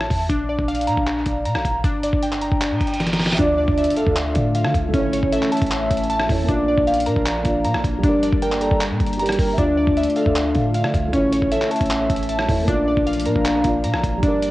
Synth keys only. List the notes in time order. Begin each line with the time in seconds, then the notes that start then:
Already playing: E5 A5
0.29 D4
0.49 D5
0.68 F5
0.87 A#5
1.45 A#5
1.84 D4
2.04 D5
2.23 G5
2.42 A#5
3.00 A#5
3.39 D4
3.58 D5
3.78 E5
3.97 F5
4.55 F5
4.94 C#4
5.13 C#5
5.32 E5
5.52 A5
6.10 A5
6.48 D4
6.68 D5
6.87 F5
7.06 A#5
7.65 A#5
8.04 D4
8.23 D5
8.42 G5
8.61 A#5
9.19 A#5
9.58 D4
9.77 D5
9.97 E5
10.16 F5
10.75 F5
11.13 C#4
11.32 C#5
11.52 E5
11.71 A5
12.29 A5
12.68 D4
12.88 D5
13.07 F5
13.26 A#5
13.84 A#5
14.23 D4
14.42 D5